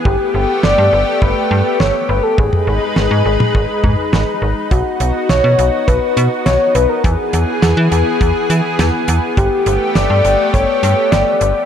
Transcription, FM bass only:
0.05 0.17 G1 loud
0.34 0.46 G1 medium
0.64 0.75 G1 loud
0.78 0.90 G2 medium
0.93 1.04 G1 medium
1.22 1.33 G1 loud
1.51 1.62 G2 loud
1.80 1.91 G1 loud
2.09 2.21 G1 loud
2.38 2.50 G#1 loud
2.67 2.79 G#1 medium
2.96 3.08 G#1 loud
3.11 3.23 G#2 loud
3.25 3.37 G#1 medium
3.55 3.66 G#1 loud
3.84 3.95 G#2 medium
4.13 4.24 G#1 loud
4.42 4.54 G#1 medium
4.71 4.83 B1 loud
5.00 5.12 B1 medium
5.29 5.41 B1 loud
5.44 5.56 B2 medium
5.58 5.70 B1 loud
5.88 5.99 B1 loud
6.17 6.28 B2 loud
6.46 6.57 B1 loud
6.75 6.87 B1 loud
7.04 7.16 E2 loud
7.33 7.45 E2 medium
7.62 7.74 E2 loud
7.77 7.89 E3 loud
7.92 8.03 E2 medium
8.21 8.32 E2 loud
8.50 8.61 E3 loud
8.79 8.91 E2 loud
9.08 9.20 E2 loud
9.37 9.49 G1 loud
9.66 9.78 G1 loud
9.95 10.07 G1 loud
10.10 10.22 G2 medium
10.25 10.36 G1 medium
10.54 10.65 G1 loud
10.83 10.94 G2 loud
11.12 11.24 G1 loud
11.41 11.53 G1 loud

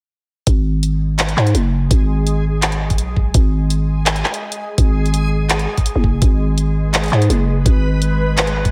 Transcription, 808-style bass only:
0.47 1.36 G#1 medium
1.37 1.54 G#2 medium
1.55 1.90 F#1 medium
1.91 3.00 G#1 loud
2.98 3.33 B1 medium
3.34 4.23 G#1 loud
4.78 5.67 G#1 loud
5.96 6.21 F#1 loud
6.22 7.11 G#1 loud
7.12 7.28 G#2 medium
7.30 7.65 F#1 medium
7.66 8.71 G#1 medium

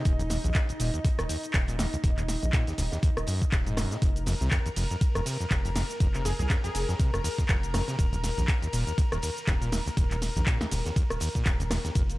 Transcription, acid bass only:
0.05 0.13 D#2 medium
0.19 0.23 C#2 loud
0.30 0.38 D#2 medium
0.44 0.50 D#2 medium
0.69 0.73 D#1 medium
0.80 0.91 A#2 medium
0.94 1.00 D#2 medium
1.04 1.09 C#2 loud
1.19 1.24 D#2 medium
1.29 1.37 D#2 medium
1.54 1.59 D#1 medium
1.68 1.77 A#2 medium
1.79 1.87 D#2 medium
1.93 1.97 C#2 loud
2.04 2.11 D#2 medium
2.18 2.24 D#2 medium
2.42 2.46 D#1 medium
2.53 2.65 A#2 medium
2.67 2.73 D#2 medium
2.78 2.83 C#2 loud
2.92 2.98 D#2 medium
3.03 3.11 D#2 medium
3.28 3.43 F#2 loud
3.42 3.45 D#2 medium
3.66 3.79 G#2 medium
3.77 3.93 F#2 medium
3.91 3.97 A#2 loud
4.02 4.10 F2 medium
4.27 4.35 F2 loud
4.41 4.50 C3 medium
4.52 4.59 F2 medium
4.66 4.69 D#2 loud
4.76 4.84 F2 medium
4.91 4.96 F2 medium
5.15 5.21 F2 loud
5.26 5.38 C3 medium
5.40 5.46 F2 medium
5.51 5.55 D#2 loud
5.65 5.71 F2 medium
5.76 5.83 F2 medium
6.00 6.08 F2 loud
6.14 6.23 C3 medium
6.25 6.33 F2 medium
6.39 6.43 D#2 loud
6.50 6.58 F2 medium
6.64 6.70 F2 medium
6.89 6.95 F2 loud
7.00 7.11 C3 medium
7.14 7.19 F2 medium
7.24 7.29 D#2 loud
7.38 7.44 F2 medium
7.49 7.57 F2 medium
7.74 7.82 F2 loud
7.88 7.97 C3 medium
7.99 8.06 D#2 medium
8.13 8.16 C#2 loud
8.23 8.31 D#2 medium
8.37 8.43 D#2 medium
8.62 8.68 D#2 loud
8.73 8.85 A#2 medium
8.87 8.93 D#2 medium
8.98 9.03 C#2 loud
9.12 9.18 D#2 medium
9.23 9.30 D#2 medium
9.47 9.55 D#2 loud
9.62 9.70 A#2 medium
9.72 9.80 D#2 medium
9.86 9.90 C#2 loud
9.97 10.05 D#2 medium
10.11 10.17 D#2 medium
10.36 10.42 D#2 loud
10.47 10.58 A#2 medium
10.61 10.67 D#2 medium
10.71 10.76 C#2 loud
10.85 10.91 D#2 medium
10.96 11.04 D#2 medium
11.21 11.29 D#2 loud
11.35 11.44 A#2 medium
11.46 11.54 D#2 medium
11.60 11.63 C#2 loud
11.70 11.78 D#2 medium
11.85 11.91 D#2 medium
11.95 12.03 F2 medium

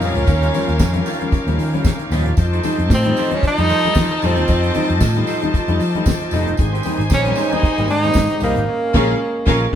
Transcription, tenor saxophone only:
0.04 1.08 C#4 medium
2.94 3.36 C4 loud
3.34 3.45 C#4 loud
3.47 4.28 D#4 loud
4.26 5.29 C4 medium
7.14 7.56 C#4 loud
7.54 7.90 D#4 loud
7.90 8.39 D#4 loud
8.44 9.75 A#3 loud

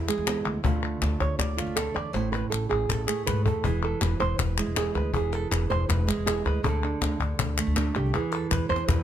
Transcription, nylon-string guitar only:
0.00 0.62 E3 medium
0.08 0.62 G#3 medium
0.08 0.27 G#4 medium
0.28 0.64 B3 soft
0.64 2.12 D3 medium
0.64 1.57 A3 medium
0.64 1.56 F4 medium
0.64 1.75 A4 soft
1.20 1.38 C#5 loud
1.39 1.58 D5 medium
1.57 2.12 A3 medium
1.57 1.76 F4 medium
1.76 1.95 A4 medium
1.94 2.13 D5 loud
2.13 3.62 A2 medium
2.13 2.32 C5 medium
2.32 2.50 B4 loud
2.50 2.69 A4 medium
2.69 2.89 G#4 medium
2.89 3.06 A4 medium
3.07 3.62 A3 medium
3.07 3.26 G#4 medium
3.26 3.45 B4 loud
3.46 3.65 A4 medium
3.64 5.12 E3 medium
3.64 3.83 G#4 medium
3.84 4.02 A4 medium
4.03 4.20 B4 medium
4.20 4.39 C5 loud
4.40 4.58 B4 medium
4.58 5.12 G#3 medium
4.58 4.77 E4 medium
4.77 4.95 G#4 medium
4.95 5.14 B4 loud
5.14 6.62 E3 medium
5.14 5.32 G#4 medium
5.32 5.51 A4 loud
5.52 5.70 B4 medium
5.70 5.88 C5 loud
5.89 6.08 B4 medium
6.07 6.62 G#3 medium
6.07 6.26 E4 medium
6.26 6.45 G#4 medium
6.46 6.64 B4 loud
6.64 8.12 D3 medium
6.64 7.77 A4 medium
6.84 7.21 D4 medium
7.22 7.76 D4 medium
7.58 8.12 A3 medium
7.78 8.12 D4 medium
7.96 8.14 G4 loud
8.14 9.03 E3 medium
8.14 8.32 G#4 medium
8.32 8.51 A4 loud
8.51 8.69 B4 loud
8.69 8.87 C5 loud
8.88 9.03 B4 loud

